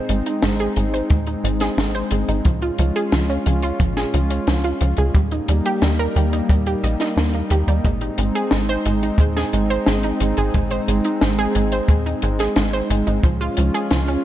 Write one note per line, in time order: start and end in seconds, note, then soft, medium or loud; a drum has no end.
0.00 5.11 G#3 medium
0.00 2.41 C4 medium
0.00 2.41 D#4 medium
0.09 0.22 G#1 medium
0.09 0.23 G#3 medium
0.09 closed hi-hat loud
0.26 0.34 D#4 medium
0.26 closed hi-hat medium
0.42 0.69 G#1 medium
0.42 0.59 G#3 medium
0.42 snare loud
0.42 closed hi-hat medium
0.59 0.73 G#4 loud
0.59 closed hi-hat soft
0.76 1.02 G#1 medium
0.76 0.90 G#3 medium
0.76 closed hi-hat medium
0.94 1.02 C5 loud
0.94 closed hi-hat medium
1.10 1.36 D#2 medium
1.10 1.24 G#3 medium
1.10 kick loud
1.10 closed hi-hat medium
1.27 1.35 D#4 medium
1.27 closed hi-hat soft
1.44 1.70 G#1 medium
1.44 1.60 G#3 medium
1.44 closed hi-hat loud
1.60 1.75 G#4 loud
1.60 snare soft
1.60 closed hi-hat medium
1.78 2.03 G#1 medium
1.78 1.91 G#3 medium
1.78 snare loud
1.78 closed hi-hat medium
1.94 2.03 C5 medium
1.94 closed hi-hat soft
2.11 2.24 G#1 medium
2.11 2.25 G#3 medium
2.11 closed hi-hat loud
2.29 2.41 G#1 medium
2.29 2.37 D#4 medium
2.29 closed hi-hat medium
2.45 2.71 C#2 medium
2.45 2.61 F3 medium
2.45 5.12 C#4 medium
2.45 5.12 F4 medium
2.45 kick loud
2.45 closed hi-hat medium
2.62 2.76 F4 loud
2.62 closed hi-hat soft
2.78 2.92 C#2 medium
2.78 2.93 F3 medium
2.78 closed hi-hat loud
2.96 3.04 G#4 loud
2.96 closed hi-hat medium
3.12 3.38 C#2 medium
3.12 3.26 F3 medium
3.12 snare loud
3.12 closed hi-hat medium
3.30 3.38 C#4 medium
3.30 closed hi-hat soft
3.46 3.72 C#2 medium
3.46 3.62 F3 medium
3.46 closed hi-hat medium
3.62 3.77 F4 loud
3.62 closed hi-hat medium
3.80 4.06 G#1 medium
3.80 3.94 F3 medium
3.80 kick loud
3.80 closed hi-hat medium
3.97 4.05 G#4 loud
3.97 snare soft
3.97 closed hi-hat soft
4.14 4.40 C#2 medium
4.14 4.27 F3 medium
4.14 closed hi-hat loud
4.30 4.39 C#4 medium
4.30 closed hi-hat medium
4.47 4.73 C#2 medium
4.47 4.64 F3 medium
4.47 snare loud
4.47 closed hi-hat medium
4.64 4.78 F4 medium
4.64 closed hi-hat soft
4.81 4.94 C#2 medium
4.81 4.95 F3 medium
4.81 closed hi-hat loud
4.97 5.11 C#2 medium
4.97 5.06 G#4 loud
4.97 closed hi-hat medium
5.15 5.40 D#2 loud
5.15 7.82 G3 medium
5.15 5.29 G3 medium
5.15 7.82 A#3 medium
5.15 13.20 D#4 medium
5.15 kick loud
5.15 closed hi-hat medium
5.32 5.40 D#4 medium
5.32 closed hi-hat soft
5.48 5.61 D#2 medium
5.48 5.65 G3 medium
5.48 closed hi-hat loud
5.65 5.79 G4 loud
5.65 closed hi-hat medium
5.82 6.08 D#2 medium
5.82 5.96 G3 medium
5.82 snare loud
5.82 closed hi-hat medium
5.99 6.07 A#4 loud
5.99 closed hi-hat soft
6.16 6.42 D#2 medium
6.16 6.30 G3 medium
6.16 closed hi-hat medium
6.33 6.41 D#4 medium
6.33 closed hi-hat medium
6.49 6.75 D#2 medium
6.49 6.66 G3 medium
6.49 kick loud
6.49 closed hi-hat medium
6.66 6.80 G4 loud
6.66 closed hi-hat soft
6.83 6.96 A#1 medium
6.83 6.92 D#5 medium
6.83 closed hi-hat medium
7.00 7.09 D#4 loud
7.00 snare soft
7.00 closed hi-hat medium
7.17 7.43 D#2 medium
7.17 7.25 A#3 medium
7.17 snare loud
7.17 closed hi-hat medium
7.33 7.50 A#3 medium
7.33 closed hi-hat soft
7.50 7.64 D#2 medium
7.50 7.67 G4 medium
7.50 closed hi-hat loud
7.67 7.80 D#2 medium
7.67 7.84 G3 loud
7.67 closed hi-hat medium
7.85 8.10 G#1 loud
7.85 14.24 G#3 medium
7.85 7.98 G#3 medium
7.85 13.20 C4 medium
7.85 kick loud
7.85 closed hi-hat medium
8.01 8.10 D#4 medium
8.01 closed hi-hat soft
8.18 8.31 G#1 medium
8.18 8.34 G#3 medium
8.18 closed hi-hat loud
8.35 8.49 G#4 medium
8.35 closed hi-hat medium
8.51 8.78 G#1 medium
8.51 8.66 G#3 medium
8.51 snare loud
8.51 closed hi-hat medium
8.68 8.77 C5 loud
8.68 closed hi-hat soft
8.86 9.11 G#1 medium
8.86 8.99 G#3 medium
8.86 closed hi-hat medium
9.03 9.11 D#4 medium
9.03 closed hi-hat medium
9.18 9.44 D#2 medium
9.18 9.36 G#3 medium
9.18 kick loud
9.18 closed hi-hat medium
9.37 9.50 G#4 loud
9.37 snare soft
9.37 closed hi-hat soft
9.53 9.79 G#1 medium
9.53 9.67 G#3 medium
9.53 closed hi-hat medium
9.70 9.78 C5 loud
9.70 closed hi-hat medium
9.86 10.13 G#1 medium
9.86 10.01 G#3 medium
9.86 snare loud
9.86 closed hi-hat medium
10.03 10.12 D#4 medium
10.03 closed hi-hat soft
10.20 10.33 G#1 medium
10.20 10.37 G#3 medium
10.20 closed hi-hat loud
10.37 10.50 G#1 medium
10.37 10.51 G#4 loud
10.37 closed hi-hat medium
10.54 10.80 G#1 medium
10.54 10.68 G#3 medium
10.54 kick medium
10.54 closed hi-hat medium
10.70 10.79 C5 loud
10.70 closed hi-hat soft
10.88 11.01 G#1 medium
10.88 11.01 G#3 medium
10.88 closed hi-hat loud
11.04 11.13 D#4 medium
11.04 closed hi-hat medium
11.21 11.47 G#1 medium
11.21 11.38 G#3 medium
11.21 snare loud
11.21 closed hi-hat medium
11.38 11.52 G#4 loud
11.38 closed hi-hat soft
11.55 11.81 G#1 medium
11.55 11.69 G#3 medium
11.55 closed hi-hat medium
11.72 11.80 C5 medium
11.72 closed hi-hat medium
11.88 12.14 D#2 medium
11.88 12.03 G#3 medium
11.88 kick loud
11.88 closed hi-hat medium
12.06 12.14 D#4 medium
12.06 closed hi-hat soft
12.22 12.49 G#1 medium
12.22 12.39 G#3 medium
12.22 closed hi-hat medium
12.39 12.53 G#4 loud
12.39 snare soft
12.39 closed hi-hat medium
12.56 12.82 G#1 medium
12.56 12.70 G#3 medium
12.56 snare loud
12.56 closed hi-hat medium
12.73 12.81 C5 medium
12.73 closed hi-hat soft
12.90 13.03 G#1 medium
12.90 13.04 G#3 medium
12.90 closed hi-hat medium
13.07 13.20 G#1 medium
13.07 13.15 D#4 medium
13.07 closed hi-hat medium
13.23 13.49 C#2 medium
13.23 13.40 F3 medium
13.23 14.24 C#4 medium
13.23 14.24 F4 medium
13.23 kick loud
13.23 closed hi-hat medium
13.41 13.54 F4 loud
13.41 closed hi-hat soft
13.57 13.71 C#2 medium
13.57 13.71 F3 medium
13.57 closed hi-hat loud
13.74 13.83 G#4 loud
13.74 closed hi-hat medium
13.91 14.17 C#2 medium
13.91 14.05 F3 medium
13.91 snare loud
13.91 closed hi-hat medium
14.08 14.16 C#4 medium
14.08 closed hi-hat soft